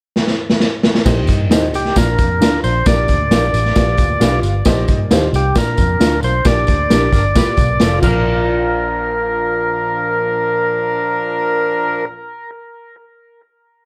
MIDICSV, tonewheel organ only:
0, 0, Header, 1, 2, 480
1, 0, Start_track
1, 0, Key_signature, -2, "major"
1, 0, Tempo, 450789
1, 1129, Time_signature, 4, 2, 24, 8
1, 14749, End_track
2, 0, Start_track
2, 0, Title_t, "Tonewheel organ"
2, 0, Program_c, 0, 16
2, 1868, Note_on_c, 0, 67, 68
2, 2105, Note_off_c, 0, 67, 0
2, 2106, Note_on_c, 0, 70, 83
2, 2775, Note_off_c, 0, 70, 0
2, 2809, Note_on_c, 0, 72, 84
2, 3049, Note_on_c, 0, 74, 87
2, 3056, Note_off_c, 0, 72, 0
2, 4683, Note_off_c, 0, 74, 0
2, 5703, Note_on_c, 0, 67, 74
2, 5939, Note_off_c, 0, 67, 0
2, 5943, Note_on_c, 0, 70, 89
2, 6607, Note_off_c, 0, 70, 0
2, 6648, Note_on_c, 0, 72, 81
2, 6884, Note_on_c, 0, 74, 97
2, 6889, Note_off_c, 0, 72, 0
2, 8514, Note_off_c, 0, 74, 0
2, 8560, Note_on_c, 0, 70, 71
2, 12834, Note_off_c, 0, 70, 0
2, 14749, End_track
0, 0, End_of_file